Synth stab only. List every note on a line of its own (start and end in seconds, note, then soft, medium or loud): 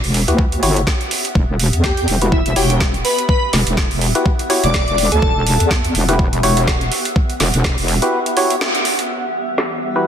0.28 0.45 E4 medium
0.28 0.45 F#4 medium
0.28 0.45 G4 medium
0.28 0.45 B4 loud
0.63 0.82 E4 medium
0.63 0.82 F#4 medium
0.63 0.82 G4 medium
0.63 0.82 C#5 loud
2.22 2.39 E4 medium
2.22 2.39 F#4 medium
2.22 2.39 G4 medium
2.22 2.39 B4 loud
2.56 2.75 E4 medium
2.56 2.75 F#4 medium
2.56 2.75 G4 medium
2.56 2.75 C#5 loud
4.15 4.32 E4 medium
4.15 4.32 F#4 medium
4.15 4.32 G4 medium
4.15 4.32 B4 loud
4.50 4.69 E4 medium
4.50 4.69 F#4 medium
4.50 4.69 G4 medium
4.50 4.69 C#5 loud
6.09 6.26 E4 medium
6.09 6.26 F#4 medium
6.09 6.26 G4 medium
6.09 6.26 B4 loud
6.43 6.62 E4 medium
6.43 6.62 F#4 medium
6.43 6.62 G4 medium
6.43 6.62 C#5 loud
8.02 8.20 E4 loud
8.02 8.20 F#4 medium
8.02 8.20 G4 medium
8.02 8.20 B4 loud
8.37 8.56 E4 medium
8.37 8.56 F#4 medium
8.37 8.56 G4 medium
8.37 8.56 C#5 loud
9.96 10.07 E4 medium
9.96 10.07 F#4 medium
9.96 10.07 G4 medium
9.96 10.07 B4 loud